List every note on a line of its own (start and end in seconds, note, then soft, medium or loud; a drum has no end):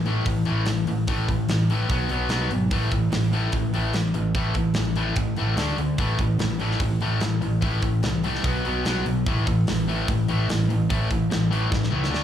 0.00 0.19 A1 medium
0.06 0.24 A2 medium
0.06 0.25 E3 medium
0.06 0.26 A3 medium
0.06 open hi-hat soft
0.25 0.43 A1 medium
0.25 0.44 A2 medium
0.25 0.45 E3 medium
0.25 kick loud
0.25 open hi-hat medium
0.45 0.63 A1 medium
0.45 0.65 A2 medium
0.45 0.66 E3 medium
0.45 0.66 A3 medium
0.45 open hi-hat soft
0.65 0.83 A1 medium
0.65 0.86 A2 medium
0.65 0.86 E3 medium
0.65 snare medium
0.65 open hi-hat medium
0.87 1.04 A1 medium
0.87 1.06 A2 medium
0.87 1.06 E3 medium
0.87 open hi-hat medium
1.07 1.25 A1 loud
1.07 1.27 A2 medium
1.07 1.27 E3 medium
1.07 1.28 A3 medium
1.07 kick loud
1.07 open hi-hat medium
1.29 1.46 A1 medium
1.29 1.47 A2 medium
1.29 1.47 E3 medium
1.29 kick medium
1.29 open hi-hat medium
1.48 1.82 A1 loud
1.48 1.68 A2 medium
1.48 1.68 E3 medium
1.48 snare loud
1.48 open hi-hat medium
1.70 1.89 A2 loud
1.70 1.89 E3 loud
1.70 1.90 A3 loud
1.70 open hi-hat medium
1.89 2.07 B1 medium
1.89 2.09 B2 medium
1.89 2.10 F#3 medium
1.89 2.10 B3 medium
1.89 kick loud
1.89 open hi-hat medium
2.09 2.27 B1 medium
2.09 2.30 B2 medium
2.09 2.30 F#3 medium
2.09 2.30 B3 medium
2.09 open hi-hat medium
2.29 2.47 B1 loud
2.29 2.50 B2 medium
2.29 2.50 F#3 medium
2.29 2.51 B3 medium
2.29 snare loud
2.29 open hi-hat medium
2.51 2.68 G#1 medium
2.51 2.69 B2 medium
2.51 2.70 F#3 medium
2.51 open hi-hat medium
2.71 2.88 A1 loud
2.71 2.91 A2 medium
2.71 2.91 E3 medium
2.71 2.91 A3 loud
2.71 kick loud
2.71 open hi-hat medium
2.91 3.09 A1 medium
2.91 3.11 A2 medium
2.91 3.11 E3 medium
2.91 kick medium
2.91 open hi-hat medium
3.11 3.46 A1 medium
3.11 3.31 A2 medium
3.11 3.31 E3 medium
3.11 snare loud
3.11 open hi-hat medium
3.33 3.52 A2 medium
3.33 3.52 E3 medium
3.33 3.53 A3 loud
3.33 open hi-hat soft
3.52 3.70 A1 medium
3.52 3.72 A2 medium
3.52 3.72 E3 medium
3.52 kick loud
3.52 open hi-hat medium
3.73 3.90 A1 medium
3.73 3.93 A2 medium
3.73 3.93 E3 medium
3.73 3.94 A3 loud
3.73 open hi-hat medium
3.93 4.11 A1 medium
3.93 4.13 A2 medium
3.93 4.13 E3 medium
3.93 snare medium
3.93 open hi-hat medium
4.14 4.32 A1 medium
4.14 4.33 A2 medium
4.14 4.33 E3 medium
4.14 open hi-hat medium
4.34 4.52 A1 medium
4.34 4.54 A2 medium
4.34 4.55 E3 medium
4.34 4.55 A3 loud
4.34 kick loud
4.34 open hi-hat medium
4.54 4.72 A1 medium
4.54 4.74 A2 medium
4.54 4.74 E3 medium
4.54 kick medium
4.54 open hi-hat medium
4.74 5.09 A1 loud
4.74 4.95 A2 medium
4.74 4.95 E3 medium
4.74 snare loud
4.74 open hi-hat medium
4.96 5.16 A2 medium
4.96 5.16 E3 loud
4.96 5.16 A3 loud
4.96 open hi-hat medium
5.16 5.33 A1 medium
5.16 5.35 A2 medium
5.16 5.35 E3 medium
5.16 kick loud
5.16 open hi-hat medium
5.36 5.54 A1 medium
5.36 5.57 A2 medium
5.36 5.57 E3 medium
5.36 5.56 A3 loud
5.36 open hi-hat medium
5.56 5.74 D2 medium
5.56 5.77 D3 medium
5.56 5.77 A3 loud
5.56 5.77 D4 medium
5.56 snare loud
5.56 open hi-hat medium
5.78 5.95 D2 medium
5.78 5.97 D3 medium
5.78 5.97 A3 medium
5.78 open hi-hat medium
5.98 6.15 A1 medium
5.98 6.18 A2 medium
5.98 6.18 E3 medium
5.98 6.18 A3 loud
5.98 kick loud
5.98 open hi-hat medium
6.19 6.36 A1 medium
6.19 6.38 A2 medium
6.19 6.38 E3 medium
6.19 kick medium
6.19 open hi-hat medium
6.39 6.73 A1 medium
6.39 6.58 A2 medium
6.39 6.58 E3 medium
6.39 snare loud
6.39 open hi-hat medium
6.60 6.79 A2 medium
6.60 6.80 E3 loud
6.60 6.80 A3 loud
6.60 open hi-hat medium
6.71 snare soft
6.80 6.97 A1 medium
6.80 6.99 A2 medium
6.80 6.99 E3 medium
6.80 kick loud
6.80 open hi-hat medium
7.01 7.18 A1 medium
7.01 7.20 A2 medium
7.01 7.20 E3 medium
7.01 7.21 A3 medium
7.01 open hi-hat soft
7.21 7.38 A1 medium
7.21 7.40 A2 medium
7.21 7.40 E3 medium
7.21 snare loud
7.21 open hi-hat medium
7.41 7.59 A1 medium
7.41 7.60 A2 medium
7.41 7.60 E3 medium
7.41 open hi-hat soft
7.61 7.79 A1 medium
7.61 7.81 A2 medium
7.61 7.81 E3 medium
7.61 7.81 A3 medium
7.61 kick loud
7.61 open hi-hat medium
7.82 8.00 A1 medium
7.82 8.01 A2 medium
7.82 8.01 E3 medium
7.82 kick medium
7.82 open hi-hat medium
8.03 8.38 C2 medium
8.03 8.21 A2 medium
8.03 8.22 E3 medium
8.03 snare loud
8.03 open hi-hat medium
8.24 8.43 A2 loud
8.24 8.43 E3 loud
8.24 8.44 A3 loud
8.24 open hi-hat medium
8.35 snare soft
8.44 8.61 B1 medium
8.44 8.63 B2 medium
8.44 8.63 F#3 medium
8.44 8.63 B3 medium
8.44 kick loud
8.44 open hi-hat medium
8.64 8.82 B1 medium
8.64 8.83 B2 medium
8.64 8.84 F#3 medium
8.64 8.84 B3 loud
8.64 open hi-hat medium
8.85 9.02 B1 medium
8.85 9.04 B2 medium
8.85 9.04 F#3 medium
8.85 9.04 B3 medium
8.85 snare loud
8.85 open hi-hat medium
9.05 9.23 B1 loud
9.05 9.24 B2 medium
9.05 9.24 F#3 medium
9.05 open hi-hat medium
9.26 9.43 A1 loud
9.26 9.45 A2 medium
9.26 9.45 E3 medium
9.26 9.46 A3 loud
9.26 kick loud
9.26 open hi-hat medium
9.47 9.64 A1 medium
9.47 9.65 A2 medium
9.47 9.65 E3 medium
9.47 kick medium
9.47 open hi-hat medium
9.67 10.01 A1 medium
9.67 9.86 A2 medium
9.67 9.86 E3 medium
9.67 snare loud
9.67 open hi-hat medium
9.88 10.07 A2 medium
9.88 10.07 E3 loud
9.88 10.07 A3 loud
9.88 open hi-hat soft
10.08 10.25 A1 medium
10.08 10.26 A2 medium
10.08 10.27 E3 medium
10.08 kick loud
10.08 open hi-hat medium
10.28 10.46 A1 medium
10.28 10.47 A2 medium
10.28 10.48 E3 medium
10.28 10.48 A3 loud
10.28 open hi-hat medium
10.49 10.66 A1 medium
10.49 10.67 A2 medium
10.49 10.67 E3 medium
10.49 snare loud
10.49 open hi-hat medium
10.69 10.86 A1 medium
10.69 10.87 A2 medium
10.69 10.88 E3 medium
10.69 open hi-hat medium
10.89 11.07 A1 medium
10.89 11.09 A2 medium
10.89 11.09 E3 medium
10.89 11.09 A3 medium
10.89 kick loud
10.89 open hi-hat medium
11.10 11.27 A1 medium
11.10 11.29 A2 medium
11.10 11.29 E3 medium
11.10 kick medium
11.10 open hi-hat medium
11.30 11.65 A1 loud
11.30 11.49 A2 medium
11.30 11.49 E3 medium
11.30 snare loud
11.30 open hi-hat medium
11.51 11.70 A2 loud
11.51 11.70 E3 loud
11.51 11.70 A3 medium
11.51 open hi-hat soft
11.71 11.89 A1 medium
11.71 11.89 A2 medium
11.71 11.89 E3 medium
11.71 kick loud
11.71 snare medium
11.83 snare medium
11.90 12.08 C#2 medium
11.90 12.10 A2 medium
11.90 12.10 E3 medium
11.90 12.09 A3 loud
12.04 snare medium
12.10 12.24 D2 medium
12.10 12.24 D3 medium
12.10 12.24 A3 medium
12.10 12.24 D4 medium
12.14 snare medium